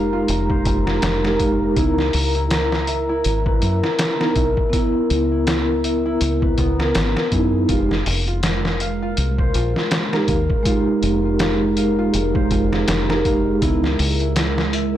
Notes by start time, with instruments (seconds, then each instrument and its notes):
Already playing: fingered electric bass F1, vibraphone G#3 D#4 G4, harp F4 A#4 F5, analog synth pad A#4 A#5
0.13 harp F4
0.28 fingered electric bass F1, closed hi-hat
0.50 harp C5, kick
0.65 fingered electric bass F1, harp F4, kick, closed hi-hat
0.87 harp F4, snare
1.02 fingered electric bass F1, snare, closed hi-hat
1.23 vibraphone G#3 D#4 G4, harp A#4, snare
1.40 harp F5, kick, closed hi-hat
1.76 fingered electric bass C#2, vibraphone B3 D#4, harp E4, kick, closed hi-hat
1.80 vibraphone E4
1.98 snare
2.13 fingered electric bass C#2, open hi-hat
2.35 harp E4, closed hi-hat
2.51 harp E4, snare, closed hi-hat
2.72 snare
2.87 harp E5, closed hi-hat
3.09 harp E4
3.24 fingered electric bass G#1, closed hi-hat
3.46 harp B4, kick
3.62 fingered electric bass F#2, harp E4, closed hi-hat
3.84 harp E4, snare
3.99 snare, closed hi-hat
4.19 vibraphone B3 D#4, harp A#4, snare
4.23 vibraphone E4
4.36 fingered electric bass B1, harp E5, kick, closed hi-hat
4.57 kick
4.70 vibraphone B3, harp E4, kick, closed hi-hat
4.78 vibraphone E4
5.10 fingered electric bass C#2, closed hi-hat
5.32 harp E4
5.47 harp E4, snare, closed hi-hat
5.84 harp E5, closed hi-hat
6.06 harp E4
6.21 fingered electric bass C#2, closed hi-hat
6.42 harp B4, kick
6.58 fingered electric bass C#2, harp B3, kick, closed hi-hat
6.80 harp A#4, snare
6.95 fingered electric bass G#1, snare, closed hi-hat
7.17 harp B4, snare
7.31 fingered electric bass F#2, vibraphone B3 D#4, harp G#4, kick, closed hi-hat
7.35 vibraphone E4
7.68 fingered electric bass F1, vibraphone G#3 D#4 G4, analog synth pad G#3 A#4, harp F4, kick, closed hi-hat
7.91 snare
8.06 fingered electric bass F1, open hi-hat
8.27 harp F4, closed hi-hat
8.43 harp F4, snare, closed hi-hat
8.65 snare
8.80 harp F5, closed hi-hat
9.02 harp F4
9.17 fingered electric bass C2, closed hi-hat
9.39 harp C5, kick
9.54 fingered electric bass A#1, harp F4, closed hi-hat
9.76 harp F4, snare
9.91 snare, closed hi-hat
10.12 vibraphone G#3 D#4 G4, harp A#4, snare
10.28 fingered electric bass D#2, harp F5, kick, closed hi-hat
10.50 kick
10.63 vibraphone G#3, harp F4, kick, closed hi-hat
10.67 vibraphone D#4 G4
11.03 fingered electric bass F1, closed hi-hat
11.25 harp F4
11.39 harp F4, snare, closed hi-hat
11.77 harp F5, closed hi-hat
11.99 harp F4
12.14 fingered electric bass F1, closed hi-hat
12.35 harp C5, kick
12.51 fingered electric bass F1, harp F4, kick, closed hi-hat
12.73 harp F4, snare
12.88 fingered electric bass F1, snare, closed hi-hat
13.09 vibraphone G#3 D#4, harp A#4, snare
13.13 vibraphone G4
13.25 harp F5, kick, closed hi-hat
13.62 fingered electric bass C#2, vibraphone B3 D#4, harp E4, kick, closed hi-hat
13.66 vibraphone E4
13.84 snare
13.99 fingered electric bass C#2, open hi-hat
14.20 harp E4, closed hi-hat
14.36 harp E4, snare, closed hi-hat
14.58 snare
14.73 harp E5, closed hi-hat